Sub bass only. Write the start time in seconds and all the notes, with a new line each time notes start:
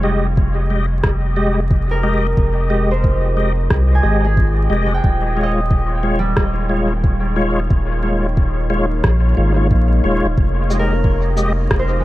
Already playing: F1
1.04 F1
2.37 F1
3.71 C2
4.04 G#1
4.70 F1
5.04 D#1
6.37 D#1
7.70 D#1
9.04 A#1
9.37 G#1
9.71 A#1
10.04 D#1
10.24 D#1
10.37 F1
11.71 F1